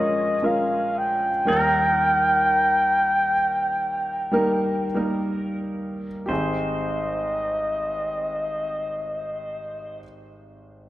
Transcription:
Already playing: grand piano A#1 A#2 G#3 C#4 F4 A#4, pedal steel guitar G#4, flugelhorn D#5
0.42 grand piano G#3 C#4 F4 A#4, flugelhorn F5
0.98 flugelhorn G5
1.45 grand piano D#2 D#3 G3 A#3 D#4 A#4, pedal steel guitar A#4
4.32 grand piano G3 A#3 D#4 A#4
4.95 grand piano G3 A#3 D#4 A#4
6.26 grand piano G#1 C4 G4, pedal steel guitar C5, flugelhorn D#5
6.30 grand piano D#4 G#4

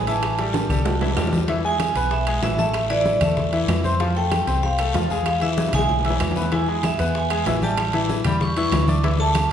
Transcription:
Already playing: fingered electric bass A1
0.07 grand piano E3 E4 E5, vibraphone A5, high conga, high timbale, short guiro
0.23 high bongo, high conga, high timbale, claves
0.38 grand piano G3 G4 A4, high bongo, high conga, high timbale
0.54 high bongo, high conga, high timbale, short guiro
0.69 fingered electric bass C2, grand piano G3 G4 A4, high bongo, high conga, low conga, short guiro, claves
0.85 high bongo, high conga, low timbale, long guiro
1.01 grand piano E3 E4 E5, high conga, low timbale
1.06 high bongo
1.17 fingered electric bass E2, grand piano G3 G4 A4, low bongo, high conga, low timbale, short guiro, claves
1.27 low bongo
1.33 high conga, low timbale, short guiro
1.38 low bongo
1.48 grand piano E3 E4 E5, high bongo, high conga, high timbale, long guiro
1.64 grand piano G#3 G#4 G#5, vibraphone G#5, high bongo, high conga
1.79 high bongo, high conga, high timbale, low timbale, short guiro, claves
1.95 fingered electric bass B1, grand piano B3 B4 B5, high bongo, high timbale, short guiro
2.11 vibraphone E5, high bongo, high conga, long guiro
2.27 grand piano G#3 G#4 G#5, high conga, high timbale, claves
2.42 fingered electric bass A1, grand piano E3 E4 E5, vibraphone E5, high bongo, low bongo, high conga, high timbale, low timbale, short guiro
2.58 grand piano A3 A4 A5, vibraphone E5, high bongo, high conga, short guiro
2.74 high bongo, high conga, high timbale, long guiro, claves
2.90 grand piano E3 E4 E5, vibraphone D5, high bongo, high conga, high timbale
3.05 high bongo, high conga, low timbale, short guiro
3.21 fingered electric bass E2, grand piano A3 A4 A5, vibraphone E5, high bongo, low conga, high timbale, short guiro, claves
3.37 high bongo, high conga, low conga, long guiro
3.53 grand piano E3 E4 E5, high conga, high timbale
3.68 fingered electric bass F2, high bongo, low bongo, high conga, high timbale, low timbale, short guiro, claves
3.84 grand piano C4 C5 C6, high bongo, high conga, short guiro
4.00 grand piano F3 F4 F5, high bongo, high conga, high timbale, long guiro
4.16 grand piano A3 A4 A5, vibraphone G5, high bongo, high conga
4.31 high bongo, high conga, high timbale, low timbale, short guiro, claves
4.47 fingered electric bass C2, grand piano C4 C5 C6, high bongo, high timbale, short guiro
4.63 vibraphone F5, high bongo, high conga, long guiro
4.79 grand piano A3 A4 A5, high conga, high timbale, claves
4.94 fingered electric bass E2, grand piano F3 F4 F5, vibraphone F5, high bongo, low bongo, high conga, high timbale, low timbale, short guiro
5.10 grand piano G#3 G#4 G#5, vibraphone F5, high bongo, high conga, short guiro
5.26 high bongo, high conga, high timbale, long guiro, claves
5.41 grand piano E3 E4 E5, vibraphone E5, high bongo, high conga, high timbale
5.57 high bongo, high conga, low timbale, short guiro
5.69 high bongo
5.73 fingered electric bass B1, grand piano G#3 G#4 G#5, vibraphone G#5, low conga, high timbale, short guiro, claves
5.79 high bongo
5.89 low bongo, high conga, low conga, long guiro
5.99 low bongo
6.05 grand piano E3 E4 E5, high conga, high timbale
6.10 low bongo
6.20 fingered electric bass E2, high conga, high timbale, low timbale, short guiro, claves
6.31 low bongo
6.36 grand piano B3 B4 B5, high conga, short guiro
6.42 low bongo
6.52 grand piano E3 E4 E5, vibraphone G#5, high bongo, high conga, high timbale, long guiro
6.68 grand piano G#3 G#4 G#5, high bongo, high conga
6.83 vibraphone E5, high bongo, high conga, high timbale, low timbale, short guiro, claves
6.99 fingered electric bass E2, grand piano B3 B4 B5, high bongo, high timbale, short guiro
7.15 vibraphone G#5, high bongo, long guiro
7.30 grand piano G#3 G#4 G#5, high conga, high timbale, claves
7.46 fingered electric bass A1, grand piano E3 E4 E5, high bongo, low bongo, high conga, high timbale, low timbale, short guiro
7.62 grand piano G3 G4 G5, vibraphone A5, high bongo, high conga, short guiro
7.77 high bongo, high conga, high timbale, long guiro, claves
7.93 grand piano E3 E4 E5, high bongo, high conga, high timbale
8.09 high bongo, high conga, low timbale, short guiro
8.24 fingered electric bass E2, grand piano G3 G4 G5, vibraphone B5, high bongo, low conga, high timbale, short guiro, claves
8.40 vibraphone C#6, high bongo, high conga, low conga, long guiro
8.57 grand piano E3 E4 E5, vibraphone C#6, high conga, high timbale
8.72 fingered electric bass D2, high bongo, low bongo, high conga, high timbale, low timbale, short guiro, claves
8.88 grand piano D4 D5 D6, high bongo, high conga, short guiro
9.03 grand piano E3 E4 E5, high bongo, high conga, high timbale, long guiro
9.19 grand piano A3 A4 A5, vibraphone A5, high bongo, high conga
9.35 high bongo, high conga, high timbale, low timbale, short guiro, claves

